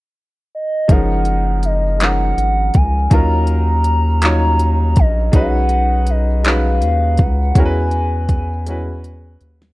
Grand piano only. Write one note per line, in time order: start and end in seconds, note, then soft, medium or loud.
0.88 1.84 F3 medium
0.88 1.82 G#3 medium
0.88 1.83 C#4 medium
0.88 1.83 D#4 medium
0.88 1.84 A#4 medium
1.99 2.95 F3 medium
1.99 2.93 G#3 medium
1.99 2.94 C#4 medium
1.99 2.94 D#4 medium
2.03 2.95 A#4 medium
3.10 4.04 F#3 medium
3.10 4.05 C#4 medium
3.10 4.05 D#4 medium
3.10 4.06 F4 medium
3.10 4.06 A#4 medium
4.22 5.16 F#3 medium
4.22 5.16 C#4 medium
4.22 5.17 D#4 medium
4.22 5.17 F4 medium
4.22 5.18 C#5 medium
5.32 6.26 G#3 medium
5.32 6.27 C#4 medium
5.32 6.27 D#4 medium
5.32 6.28 F#4 medium
5.32 6.28 B4 medium
6.43 7.38 G#3 medium
6.43 7.38 C#4 medium
6.43 7.39 D#4 medium
6.43 7.39 F#4 medium
6.43 7.40 B4 medium
7.55 8.49 G#3 medium
7.55 8.50 C#4 medium
7.55 8.50 E4 medium
7.55 8.51 F#4 medium
7.59 7.64 A#4 medium
7.65 8.54 B4 medium
8.66 9.60 G#3 medium
8.66 9.61 C#4 medium
8.66 9.61 E4 medium
8.66 9.62 F#4 medium
8.66 9.62 B4 medium